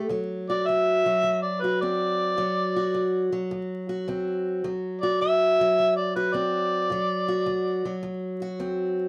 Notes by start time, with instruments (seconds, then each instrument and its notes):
0.09 steel-string acoustic guitar D2 F#3
0.49 steel-string acoustic guitar F#4, harmonica D5
0.67 steel-string acoustic guitar D2, harmonica E5
1.06 steel-string acoustic guitar F#3
1.23 steel-string acoustic guitar D2
1.42 harmonica D5
1.61 steel-string acoustic guitar F#4, harmonica B4
1.81 steel-string acoustic guitar D2 C4, harmonica D5
2.37 steel-string acoustic guitar D2 F#3
2.76 steel-string acoustic guitar F#4
2.94 steel-string acoustic guitar D2
3.32 steel-string acoustic guitar F#3
3.51 steel-string acoustic guitar D2
3.89 steel-string acoustic guitar F#4
4.08 steel-string acoustic guitar D2 C4
4.64 steel-string acoustic guitar D2 F#3
5.01 steel-string acoustic guitar F#4, harmonica D5
5.21 steel-string acoustic guitar D2, harmonica E5
5.61 steel-string acoustic guitar F#3
5.79 steel-string acoustic guitar D2
5.96 harmonica D5
6.16 steel-string acoustic guitar F#4, harmonica B4
6.34 steel-string acoustic guitar D2 C4, harmonica D5
6.90 steel-string acoustic guitar D2 F#3
7.28 steel-string acoustic guitar F#4
7.46 steel-string acoustic guitar D2
7.85 steel-string acoustic guitar F#3
8.03 steel-string acoustic guitar D2
8.42 steel-string acoustic guitar F#4
8.60 steel-string acoustic guitar D2 C4